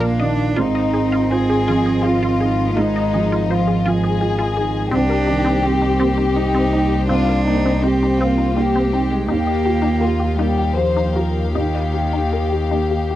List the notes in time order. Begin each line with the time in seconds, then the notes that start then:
Already playing: A#1 A#2 A#3 D4 F4 F5
0.00 A#3 A#4
0.20 D#3 D4 D#5
0.56 G#1 G#2 G#3 C4 D#4 F4 D#5
0.75 D#5
0.94 D#4 G#4
1.12 F4
1.31 F4 G#4 C5
1.50 G#4
1.68 F3 F4
1.86 G#4
2.03 F4 G#4
2.23 F4
2.40 D#4 G#4
2.77 G#2 G#3 D#4 F4
2.96 D#5
3.14 F3 G#4
3.32 F4
3.50 F3 F4 C5
3.67 G#4
3.85 F3 F4 G#4
4.04 G#4
4.21 F4 G#4
4.39 F4
4.57 D#4 G#4
4.91 C2 A#3 C4 D4 G4 C5
5.10 A#4
5.27 D#3 D#4
5.45 C4
5.63 C4 G4
5.82 D#4
6.00 A#3 C4
6.18 D#4
6.35 D#4 G4
6.55 C4
6.73 D#4
7.08 C2 C4 D4 F4
7.29 A#4
7.46 A#3 D#4
7.66 C4
7.82 C4 G4
8.03 D#4
8.18 A#3 C4 F4
8.38 D#4
8.56 A#3 D#4 G4
8.76 C4
8.92 C4 D#4
9.10 G#3
9.28 D#2 A#3 D#4 G4 F5
9.47 D#5
9.66 F4 G4
9.82 D#4
10.01 F4 G4 A#4
10.20 G4
10.38 G3 A#3 D#4 G4
10.58 G4
10.74 F3 G4 C5
10.97 D#4
11.15 F4 G4 A#4
11.55 D#2 D#3 D#4 G4
11.75 D#5
11.94 A#3 G4
12.13 D#4
12.33 G4 A#4
12.53 G4
12.71 A#3 D#4
12.91 G4
13.11 G4